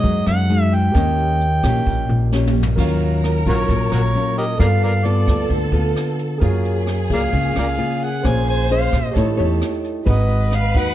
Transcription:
Already playing: G#3 D#4 F#4 G#4 C#5 D#5
0.03 F#2 F#3, kick, closed hi-hat
0.26 F#2 F#5, cross-stick, closed hi-hat
0.49 G#3 D#4 F#4, closed hi-hat
0.62 E5
0.72 G5, closed hi-hat
0.92 D#2 D#3 A#3 C#4 G4 A#4, kick, cross-stick, closed hi-hat
0.96 G4 C#5 D#5
1.18 closed hi-hat
1.41 closed hi-hat
1.63 A#1 A#3 C#4 G4, kick, cross-stick, closed hi-hat
1.86 A#1 A#2, kick, closed hi-hat
2.09 A#1, closed hi-hat
2.32 A#3 C#4 G4, snare
2.47 mid tom
2.63 floor tom
2.76 D#2 D#3 F#3 C#4 F4 A#4 C#5, kick, crash
2.80 F5
3.01 closed hi-hat
3.24 cross-stick, closed hi-hat
3.46 A#1 F#3 C#4 F4 F#4 A#4 C#5, kick, closed hi-hat
3.69 A#1 A#2, kick, closed hi-hat
3.92 A#1 F#4 A#4 C#5, cross-stick, closed hi-hat
4.14 F#3 C#4 F4, closed hi-hat
4.37 G4 A#4 D#5, closed hi-hat
4.56 G3 B3 F4 A4 B4
4.60 G2 A4 A#4 D5 F5, kick, cross-stick, closed hi-hat
4.82 A#4 D5 F5, closed hi-hat
5.05 B3 F4 A4 D5, closed hi-hat
5.27 D2, kick, cross-stick, closed hi-hat
5.48 D2 D3, kick, closed hi-hat
5.72 D2 B3 F4 A4, closed hi-hat
5.96 cross-stick, closed hi-hat
6.19 closed hi-hat
6.38 F#2 F#3 A#3 F4 G#4 A#4, kick, closed hi-hat
6.42 G#4 C#5 F5
6.65 closed hi-hat
6.87 cross-stick, closed hi-hat
7.10 C#2 A#3 F4 G#4 A#4 D5 F5, kick, closed hi-hat
7.33 C#2 C#3, kick, closed hi-hat
7.56 C#2 A#4 D5 F5, cross-stick, closed hi-hat
7.78 A#3 F4 G#4, closed hi-hat
8.01 F#5, closed hi-hat
8.21 A#1 A#3 C#4 G#4 C5, kick, cross-stick, closed hi-hat
8.27 F5 G#5
8.47 G#5, closed hi-hat
8.70 C#4 G#4 C5 F5, closed hi-hat
8.93 A#1, kick, cross-stick, closed hi-hat
9.12 G4 A4 C#5
9.16 A1 A3 D#4 E4 G4 C#5 D#5, kick, closed hi-hat
9.37 E2 D#4 G4 C#5, closed hi-hat
9.62 cross-stick, closed hi-hat
9.84 closed hi-hat
10.05 G#1 G#3 D#4 F#4 B4 D#5, kick, closed hi-hat
10.10 D#5 F#5
10.29 closed hi-hat
10.52 F5, cross-stick, closed hi-hat
10.75 D#2 D#4 F#4 B4 F#5, kick, closed hi-hat

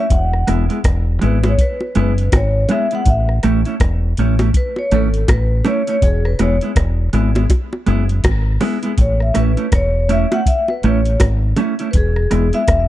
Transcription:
Already playing: E5
0.10 E1 F#5, kick, closed hi-hat
0.33 cross-stick
0.47 E1 G#3 B3 E4, cross-stick, closed hi-hat
0.69 G#3 B3 E4, closed hi-hat
0.84 E1, kick, cross-stick, closed hi-hat
1.21 G#1 G#3 B3 E4 B4, closed hi-hat
1.43 G#3 B3 E4, closed hi-hat, high bongo
1.48 C#5
1.58 B4, kick, closed hi-hat
1.81 high bongo
1.95 F#1 G#3 B3 E4, closed hi-hat
1.99 B4
2.18 closed hi-hat
2.32 G#1, kick, cross-stick, closed hi-hat, high bongo
2.37 C#5
2.69 G#3 B3 E4 E5, closed hi-hat, low bongo
2.91 G#3 B3 E4 F#5, closed hi-hat
3.06 A1 E5, kick, closed hi-hat
3.29 cross-stick
3.43 A1 A3 C#4 E4, cross-stick, closed hi-hat
3.65 A3 C#4 E4, closed hi-hat
3.80 E1, kick, cross-stick, closed hi-hat
4.17 A1 A3 C#4 E4, closed hi-hat
4.39 A3 C#4 E4, closed hi-hat, high bongo
4.54 B4, kick, closed hi-hat
4.76 C#5, high bongo
4.91 G#1 A3 C#4 E4 A4, closed hi-hat
5.14 closed hi-hat
5.28 A1 B4, kick, cross-stick, closed hi-hat, high bongo
5.65 A3 C#4 E4 C#5, closed hi-hat, low bongo
5.87 A3 C#4 E4 C#5, closed hi-hat
6.02 E1 G#4, kick, closed hi-hat
6.25 B4, cross-stick
6.39 E1 G#3 B3 E4 C#5, cross-stick, closed hi-hat, high bongo
6.61 G#3 B3 E4, closed hi-hat
6.76 E1, kick, cross-stick, closed hi-hat
7.13 G#1 G#3 B3 E4, closed hi-hat
7.35 G#3 B3 E4, closed hi-hat, high bongo
7.49 kick, closed hi-hat, high bongo
7.73 high bongo
7.86 F#1 G#3 B3 E4, closed hi-hat
8.09 closed hi-hat
8.24 G#1, kick, cross-stick, closed hi-hat, high bongo
8.61 G#3 B3 E4, open hi-hat, low bongo
8.83 G#3 B3 E4, closed hi-hat
8.98 A1 C#5, kick, closed hi-hat
9.20 E5, cross-stick
9.34 A1 A3 C#4 E4, cross-stick, closed hi-hat
9.39 B4
9.57 A3 C#4 E4, closed hi-hat
9.72 E1 C#5, kick, cross-stick, closed hi-hat
10.09 A3 C#4 E4 E5, closed hi-hat
10.31 A3 C#4 E4 F#5, closed hi-hat, high bongo
10.46 E5, kick, closed hi-hat
10.68 B4, high bongo
10.83 A1 A3 C#4 E4 C#5, closed hi-hat
11.05 closed hi-hat
11.20 G#1, kick, cross-stick, closed hi-hat, high bongo
11.56 A3 C#4 E4, closed hi-hat, low bongo
11.79 A3 C#4 E4, closed hi-hat
11.91 E1 B4, kick, closed hi-hat
11.97 G#4
12.16 cross-stick
12.31 E1 G#3 B3 E4, cross-stick, closed hi-hat
12.53 G#3 B3 E4 E5, closed hi-hat
12.68 E1, kick, cross-stick, closed hi-hat

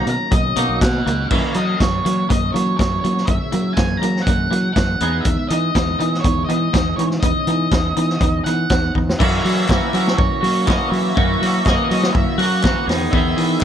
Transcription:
Already playing: D#3 A#3 C#4 F#4
0.07 B2 F#3 A#3 A#5, closed hi-hat
0.31 B1 F#3 A#3 D#5, kick, closed hi-hat
0.56 B2 F#3 A#3 D#4, closed hi-hat
0.69 B1
0.81 B2 F#3 A#3 F#5, kick, snare, clap, closed hi-hat
1.06 C#2 F#3 A#3, closed hi-hat
1.29 F#2 E3 A#3 C#4 F#4 E5, kick, crash
1.54 E3 F#3 A#3 D#5, closed hi-hat
1.80 F#2 E3 A#3 C#5, kick, snare, closed hi-hat
2.05 E3 F#3 A#3, closed hi-hat
2.29 F#2 E3 A#3 D#5, kick, closed hi-hat
2.52 E3 F#3 A#3 C#5, closed hi-hat
2.78 F#2 E3 A#3 C#5, kick, snare, closed hi-hat
3.00 C#5
3.04 E3 F#3 A#3, closed hi-hat
3.17 snare
3.25 F#2 E3 A#3 G#4 E5, kick, closed hi-hat
3.52 E3 F#3 A#3, closed hi-hat
3.73 E3 G#5, closed hi-hat
3.77 F#2 A#3, kick, snare
3.97 F#3 A#5
4.02 E3 A#3, closed hi-hat
4.16 snare
4.22 F#5
4.27 F#2 E3 A#3, kick, closed hi-hat
4.51 E3 F#3 A#3, closed hi-hat
4.74 F#2 E3 A#3 F#5, kick, snare, closed hi-hat
4.98 E2 G#3 B3 D#4 E4, closed hi-hat
5.03 G#4
5.21 E5
5.25 E2 B3 D#4, kick, closed hi-hat
5.49 E3 B3 D#4 D#5, closed hi-hat
5.75 E2 B3 D#4, kick, snare, closed hi-hat
5.99 E3 B3 D#4, closed hi-hat
6.14 snare
6.20 C#5
6.24 E2 B3 D#4, kick, closed hi-hat
6.45 D#5
6.49 E3 B3 D#4, closed hi-hat
6.73 E2 B3 D#4, kick, snare, closed hi-hat
6.96 E3 B3 C#4 D#4 C#5, closed hi-hat
7.11 snare
7.20 E2 B3 D#4 D#5, kick, closed hi-hat
7.47 E3 B3 D#4, closed hi-hat
7.72 E2 B3 D#4, kick, snare, closed hi-hat
7.96 E3 B3 D#4, closed hi-hat
8.10 snare
8.21 E2 B3 D#4, kick, closed hi-hat
8.44 E3 B3 D#4 F#5, closed hi-hat
8.70 E2 B3 D#4, kick, snare, closed hi-hat
8.95 E2 B3 D#4, kick
9.09 snare
9.19 F#2 E3 A#3 C#4 F#4 E5, kick, crash
9.44 F#3 A#3 C#4 F#4, open hi-hat
9.69 F#2 E3 A#3 C#4 E5, kick, snare, clap
9.73 F#4
9.93 F#3 A#3 C#4 F#4, clap, open hi-hat
10.07 snare
10.18 F#2 C#5, kick
10.41 F#3 A#3 C#4 F#4, open hi-hat
10.66 F#2 E3 A#3 C#4 F#4 D#5, kick, clap
10.70 snare
10.91 F#3 E5, open hi-hat
11.14 F#2 E3 A#3 C#4 F#4, kick
11.40 F#3 A#3 C#4 F#4, open hi-hat
11.65 F#2 E3 A#3 C#4 F#4 D#5, kick, snare, clap
11.90 F#3 A#3 C#4 F#4 D#5, open hi-hat
12.03 snare
12.13 F#2 E5, kick
12.38 F#3 C#4 F#4 F#5, open hi-hat
12.42 A#3
12.63 F#2 E3 A#3 C#4 F#4, kick, snare, clap
12.87 E2 D#3 B3 D#4 G#4, snare, open hi-hat
13.11 E2 D#3 B3 D#4 E5, kick
13.15 G#4
13.36 E3 B3 D#4 G#4, open hi-hat
13.60 D#3 E5, clap

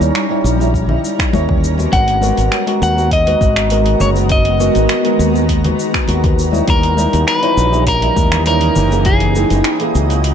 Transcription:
Already playing: G3 C#4 D#4 E4 C#5 A#5
0.00 D#2, muted conga, cabasa
0.15 finger snap, cabasa
0.29 G3 D#4 E4 C#5
0.44 A#1, cabasa
0.59 G3 D#4 E4 C#5, cabasa
0.74 kick, cabasa
0.88 G3 D#4 E4 D#5, low conga
1.05 cabasa
1.19 finger snap, kick, cabasa
1.32 D#2 G3 D#4 E4 C#5, muted conga, high conga, cabasa
1.49 kick, low conga
1.64 cabasa
1.77 G#3 B3 F#4 A#4, high conga, cabasa
1.92 G#1 D#3 G#3 B3 F#4 F#5 A#5, kick, open hi-hat, cabasa
2.08 open hi-hat
2.22 G#3 B3 F#4 A#4, high conga, cabasa
2.37 G#1, open hi-hat, cabasa
2.52 finger snap, open hi-hat, cabasa
2.66 G#3 B3 F#4 A#4, open hi-hat
2.82 D#2 F#5, cabasa
2.96 G#3 B3 F#4 A#4, cabasa
3.11 D#5, kick, open hi-hat, cabasa
3.26 G#3 B3 F#4 B4, open hi-hat
3.41 G#1, kick, high conga, cabasa
3.56 finger snap, cabasa
3.70 G#3 B3 F#4 A#4, open hi-hat, cabasa
3.86 open hi-hat
4.00 F#1 C#5, low conga, cabasa
4.15 G#3 B3 F#4 A#4, cabasa
4.29 D#5, kick, open hi-hat, cabasa
4.45 open hi-hat
4.59 G#3 B3 F#4 A#4, high conga, cabasa
4.75 G#1, open hi-hat, muted conga, cabasa
4.89 finger snap, open hi-hat, cabasa
5.04 G#3 B3 F#4 A#4, open hi-hat
5.19 D#2, cabasa
5.33 G#3 B3 F#4 A#4, cabasa
5.49 kick, open hi-hat, cabasa
5.64 G#3 B3 F#4 B4, open hi-hat, low conga
5.80 cabasa
5.94 finger snap, kick, cabasa
6.08 D#2 G#3 B3 F#4 A#4, open hi-hat, muted conga, high conga, cabasa
6.24 kick, open hi-hat, low conga
6.39 cabasa
6.51 G3 D#4 E4 C#5, high conga, cabasa
6.68 D#2 E3 C#4 G4 A#4 D#5, kick, open hi-hat, cabasa
6.83 open hi-hat
6.96 G3 D#4 E4 C#5, high conga, cabasa
7.13 D#2, open hi-hat, cabasa
7.28 B4, finger snap, open hi-hat, cabasa
7.42 G3 D#4 E4 C#5, open hi-hat
7.57 A#1, cabasa
7.72 G3 D#4 E4 C#5, cabasa
7.87 A#4, kick, open hi-hat, cabasa
8.02 G3 D#4 E4 D#5, open hi-hat
8.16 D#2, kick, high conga, cabasa
8.32 finger snap, cabasa
8.46 G3 D#4 E4 A#4 C#5, open hi-hat, cabasa
8.61 open hi-hat
8.76 F#1, low conga, cabasa
8.91 E3 A#3 D#4 G#4, cabasa
9.05 G#3 F#4 G#4, kick, open hi-hat, cabasa
9.20 open hi-hat
9.35 E3 A#3 D#4 G#4, high conga, cabasa
9.50 F#1, open hi-hat, muted conga, cabasa
9.64 finger snap, open hi-hat, cabasa
9.80 E3 A#3 D#4 G#4, open hi-hat
9.95 C#2, cabasa
10.10 E3 A#3 D#4 G#4, open hi-hat, cabasa
10.21 F#4, open hi-hat, cabasa

